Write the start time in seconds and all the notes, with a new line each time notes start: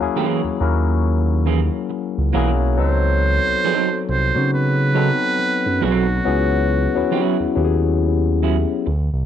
Already playing: E4 G#4
0.00 D#2 F#3 A#3 C#4 E4 G#4
0.16 E3 A#3 C#4 G#4
0.44 D#2
0.60 D#2 F#3 A#3 C#4 E4 A#4
1.46 E3 A#3 C#4 G#4
1.90 muted clean electric guitar stroke
2.18 C#2
2.33 B1 E3 F#3 A#3 C#4 E4 G#4
2.77 C#2 F#3 B3 C4 D#4 A4 C5
3.48 C2
3.64 F#3 C4 D#4 A4
4.09 C2 C5
4.35 C#3 F#3 B3 C4 D#4 F#4
4.54 B4
4.94 F#3 B3 C4 D#4 A4
5.39 muted clean electric guitar stroke
5.66 F#2
5.81 B1 F#3 C4 D#4 F#4 A4
6.25 C#2 F#3 B3 C#4 E4 G#4
6.95 D#2 F#3 B3 C#4 E4 B4
7.11 F#3 C#4 E4 G#4
7.40 D#2
7.56 D#2 F#3 B3 C#4 E4 G4
7.64 G#4
8.43 F#3 C#4 E4 G#4
8.86 D2, muted clean electric guitar stroke
9.13 C2